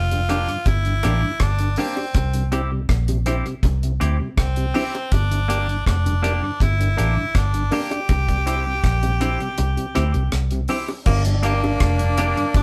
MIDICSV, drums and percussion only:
0, 0, Header, 1, 2, 480
1, 0, Start_track
1, 0, Tempo, 742574
1, 1390, Time_signature, 4, 2, 24, 8
1, 8163, End_track
2, 0, Start_track
2, 0, Title_t, "Drums"
2, 74, Note_on_c, 9, 42, 51
2, 79, Note_on_c, 9, 60, 45
2, 138, Note_off_c, 9, 42, 0
2, 144, Note_off_c, 9, 60, 0
2, 190, Note_on_c, 9, 42, 77
2, 199, Note_on_c, 9, 61, 70
2, 255, Note_off_c, 9, 42, 0
2, 264, Note_off_c, 9, 61, 0
2, 313, Note_on_c, 9, 42, 33
2, 378, Note_off_c, 9, 42, 0
2, 426, Note_on_c, 9, 36, 112
2, 426, Note_on_c, 9, 42, 75
2, 432, Note_on_c, 9, 60, 70
2, 490, Note_off_c, 9, 42, 0
2, 491, Note_off_c, 9, 36, 0
2, 497, Note_off_c, 9, 60, 0
2, 549, Note_on_c, 9, 42, 42
2, 614, Note_off_c, 9, 42, 0
2, 666, Note_on_c, 9, 42, 65
2, 668, Note_on_c, 9, 37, 61
2, 678, Note_on_c, 9, 60, 53
2, 731, Note_off_c, 9, 42, 0
2, 733, Note_off_c, 9, 37, 0
2, 743, Note_off_c, 9, 60, 0
2, 903, Note_on_c, 9, 42, 80
2, 905, Note_on_c, 9, 37, 103
2, 907, Note_on_c, 9, 36, 102
2, 968, Note_off_c, 9, 42, 0
2, 969, Note_off_c, 9, 37, 0
2, 971, Note_off_c, 9, 36, 0
2, 1025, Note_on_c, 9, 42, 44
2, 1090, Note_off_c, 9, 42, 0
2, 1139, Note_on_c, 9, 46, 60
2, 1153, Note_on_c, 9, 61, 82
2, 1204, Note_off_c, 9, 46, 0
2, 1218, Note_off_c, 9, 61, 0
2, 1273, Note_on_c, 9, 60, 70
2, 1338, Note_off_c, 9, 60, 0
2, 1387, Note_on_c, 9, 42, 85
2, 1388, Note_on_c, 9, 36, 110
2, 1397, Note_on_c, 9, 60, 67
2, 1451, Note_off_c, 9, 42, 0
2, 1453, Note_off_c, 9, 36, 0
2, 1462, Note_off_c, 9, 60, 0
2, 1509, Note_on_c, 9, 42, 55
2, 1574, Note_off_c, 9, 42, 0
2, 1629, Note_on_c, 9, 42, 65
2, 1633, Note_on_c, 9, 60, 55
2, 1694, Note_off_c, 9, 42, 0
2, 1698, Note_off_c, 9, 60, 0
2, 1868, Note_on_c, 9, 36, 97
2, 1868, Note_on_c, 9, 42, 85
2, 1870, Note_on_c, 9, 37, 89
2, 1933, Note_off_c, 9, 36, 0
2, 1933, Note_off_c, 9, 42, 0
2, 1934, Note_off_c, 9, 37, 0
2, 1991, Note_on_c, 9, 42, 54
2, 1997, Note_on_c, 9, 60, 45
2, 2056, Note_off_c, 9, 42, 0
2, 2061, Note_off_c, 9, 60, 0
2, 2107, Note_on_c, 9, 42, 77
2, 2118, Note_on_c, 9, 61, 65
2, 2172, Note_off_c, 9, 42, 0
2, 2182, Note_off_c, 9, 61, 0
2, 2235, Note_on_c, 9, 42, 31
2, 2300, Note_off_c, 9, 42, 0
2, 2346, Note_on_c, 9, 36, 107
2, 2349, Note_on_c, 9, 42, 74
2, 2356, Note_on_c, 9, 60, 70
2, 2411, Note_off_c, 9, 36, 0
2, 2413, Note_off_c, 9, 42, 0
2, 2420, Note_off_c, 9, 60, 0
2, 2476, Note_on_c, 9, 42, 46
2, 2541, Note_off_c, 9, 42, 0
2, 2593, Note_on_c, 9, 42, 64
2, 2600, Note_on_c, 9, 60, 59
2, 2658, Note_off_c, 9, 42, 0
2, 2665, Note_off_c, 9, 60, 0
2, 2828, Note_on_c, 9, 36, 111
2, 2829, Note_on_c, 9, 42, 80
2, 2830, Note_on_c, 9, 37, 109
2, 2893, Note_off_c, 9, 36, 0
2, 2893, Note_off_c, 9, 42, 0
2, 2894, Note_off_c, 9, 37, 0
2, 2949, Note_on_c, 9, 42, 45
2, 3014, Note_off_c, 9, 42, 0
2, 3067, Note_on_c, 9, 46, 56
2, 3076, Note_on_c, 9, 61, 79
2, 3132, Note_off_c, 9, 46, 0
2, 3141, Note_off_c, 9, 61, 0
2, 3197, Note_on_c, 9, 42, 31
2, 3199, Note_on_c, 9, 60, 69
2, 3261, Note_off_c, 9, 42, 0
2, 3264, Note_off_c, 9, 60, 0
2, 3307, Note_on_c, 9, 42, 87
2, 3309, Note_on_c, 9, 36, 106
2, 3324, Note_on_c, 9, 60, 60
2, 3372, Note_off_c, 9, 42, 0
2, 3374, Note_off_c, 9, 36, 0
2, 3388, Note_off_c, 9, 60, 0
2, 3436, Note_on_c, 9, 42, 54
2, 3500, Note_off_c, 9, 42, 0
2, 3554, Note_on_c, 9, 42, 68
2, 3559, Note_on_c, 9, 60, 55
2, 3618, Note_off_c, 9, 42, 0
2, 3623, Note_off_c, 9, 60, 0
2, 3679, Note_on_c, 9, 42, 34
2, 3744, Note_off_c, 9, 42, 0
2, 3791, Note_on_c, 9, 36, 102
2, 3795, Note_on_c, 9, 42, 85
2, 3797, Note_on_c, 9, 37, 105
2, 3855, Note_off_c, 9, 36, 0
2, 3860, Note_off_c, 9, 42, 0
2, 3862, Note_off_c, 9, 37, 0
2, 3919, Note_on_c, 9, 42, 56
2, 3920, Note_on_c, 9, 60, 44
2, 3983, Note_off_c, 9, 42, 0
2, 3985, Note_off_c, 9, 60, 0
2, 4034, Note_on_c, 9, 42, 82
2, 4042, Note_on_c, 9, 61, 68
2, 4099, Note_off_c, 9, 42, 0
2, 4106, Note_off_c, 9, 61, 0
2, 4269, Note_on_c, 9, 36, 105
2, 4274, Note_on_c, 9, 42, 75
2, 4276, Note_on_c, 9, 60, 72
2, 4334, Note_off_c, 9, 36, 0
2, 4338, Note_off_c, 9, 42, 0
2, 4341, Note_off_c, 9, 60, 0
2, 4400, Note_on_c, 9, 42, 49
2, 4464, Note_off_c, 9, 42, 0
2, 4515, Note_on_c, 9, 42, 67
2, 4520, Note_on_c, 9, 60, 57
2, 4579, Note_off_c, 9, 42, 0
2, 4585, Note_off_c, 9, 60, 0
2, 4750, Note_on_c, 9, 36, 106
2, 4750, Note_on_c, 9, 42, 85
2, 4751, Note_on_c, 9, 37, 102
2, 4815, Note_off_c, 9, 36, 0
2, 4815, Note_off_c, 9, 42, 0
2, 4816, Note_off_c, 9, 37, 0
2, 4873, Note_on_c, 9, 42, 47
2, 4938, Note_off_c, 9, 42, 0
2, 4987, Note_on_c, 9, 46, 56
2, 4990, Note_on_c, 9, 61, 81
2, 5052, Note_off_c, 9, 46, 0
2, 5054, Note_off_c, 9, 61, 0
2, 5114, Note_on_c, 9, 60, 69
2, 5115, Note_on_c, 9, 42, 33
2, 5179, Note_off_c, 9, 60, 0
2, 5180, Note_off_c, 9, 42, 0
2, 5229, Note_on_c, 9, 42, 86
2, 5231, Note_on_c, 9, 36, 111
2, 5239, Note_on_c, 9, 60, 63
2, 5294, Note_off_c, 9, 42, 0
2, 5296, Note_off_c, 9, 36, 0
2, 5304, Note_off_c, 9, 60, 0
2, 5356, Note_on_c, 9, 36, 74
2, 5356, Note_on_c, 9, 42, 54
2, 5420, Note_off_c, 9, 36, 0
2, 5421, Note_off_c, 9, 42, 0
2, 5475, Note_on_c, 9, 42, 67
2, 5478, Note_on_c, 9, 60, 54
2, 5540, Note_off_c, 9, 42, 0
2, 5542, Note_off_c, 9, 60, 0
2, 5712, Note_on_c, 9, 36, 100
2, 5713, Note_on_c, 9, 42, 85
2, 5715, Note_on_c, 9, 37, 90
2, 5777, Note_off_c, 9, 36, 0
2, 5778, Note_off_c, 9, 42, 0
2, 5779, Note_off_c, 9, 37, 0
2, 5836, Note_on_c, 9, 42, 55
2, 5840, Note_on_c, 9, 60, 46
2, 5901, Note_off_c, 9, 42, 0
2, 5905, Note_off_c, 9, 60, 0
2, 5953, Note_on_c, 9, 42, 76
2, 5959, Note_on_c, 9, 61, 73
2, 6018, Note_off_c, 9, 42, 0
2, 6023, Note_off_c, 9, 61, 0
2, 6079, Note_on_c, 9, 42, 31
2, 6144, Note_off_c, 9, 42, 0
2, 6191, Note_on_c, 9, 42, 76
2, 6194, Note_on_c, 9, 60, 73
2, 6255, Note_off_c, 9, 42, 0
2, 6259, Note_off_c, 9, 60, 0
2, 6318, Note_on_c, 9, 42, 44
2, 6383, Note_off_c, 9, 42, 0
2, 6434, Note_on_c, 9, 42, 70
2, 6436, Note_on_c, 9, 37, 59
2, 6439, Note_on_c, 9, 60, 56
2, 6499, Note_off_c, 9, 42, 0
2, 6501, Note_off_c, 9, 37, 0
2, 6504, Note_off_c, 9, 60, 0
2, 6555, Note_on_c, 9, 42, 32
2, 6620, Note_off_c, 9, 42, 0
2, 6671, Note_on_c, 9, 42, 77
2, 6672, Note_on_c, 9, 37, 98
2, 6735, Note_off_c, 9, 42, 0
2, 6736, Note_off_c, 9, 37, 0
2, 6791, Note_on_c, 9, 42, 44
2, 6856, Note_off_c, 9, 42, 0
2, 6903, Note_on_c, 9, 46, 59
2, 6910, Note_on_c, 9, 61, 85
2, 6968, Note_off_c, 9, 46, 0
2, 6974, Note_off_c, 9, 61, 0
2, 7036, Note_on_c, 9, 60, 66
2, 7101, Note_off_c, 9, 60, 0
2, 7147, Note_on_c, 9, 49, 102
2, 7150, Note_on_c, 9, 36, 123
2, 7164, Note_on_c, 9, 60, 68
2, 7212, Note_off_c, 9, 49, 0
2, 7215, Note_off_c, 9, 36, 0
2, 7228, Note_off_c, 9, 60, 0
2, 7271, Note_on_c, 9, 42, 61
2, 7335, Note_off_c, 9, 42, 0
2, 7390, Note_on_c, 9, 42, 76
2, 7454, Note_off_c, 9, 42, 0
2, 7523, Note_on_c, 9, 60, 72
2, 7588, Note_off_c, 9, 60, 0
2, 7630, Note_on_c, 9, 42, 86
2, 7631, Note_on_c, 9, 36, 108
2, 7631, Note_on_c, 9, 37, 109
2, 7694, Note_off_c, 9, 42, 0
2, 7695, Note_off_c, 9, 36, 0
2, 7696, Note_off_c, 9, 37, 0
2, 7752, Note_on_c, 9, 42, 56
2, 7817, Note_off_c, 9, 42, 0
2, 7870, Note_on_c, 9, 42, 87
2, 7876, Note_on_c, 9, 61, 78
2, 7935, Note_off_c, 9, 42, 0
2, 7941, Note_off_c, 9, 61, 0
2, 7998, Note_on_c, 9, 42, 35
2, 8063, Note_off_c, 9, 42, 0
2, 8109, Note_on_c, 9, 36, 125
2, 8109, Note_on_c, 9, 42, 79
2, 8116, Note_on_c, 9, 60, 76
2, 8163, Note_off_c, 9, 36, 0
2, 8163, Note_off_c, 9, 42, 0
2, 8163, Note_off_c, 9, 60, 0
2, 8163, End_track
0, 0, End_of_file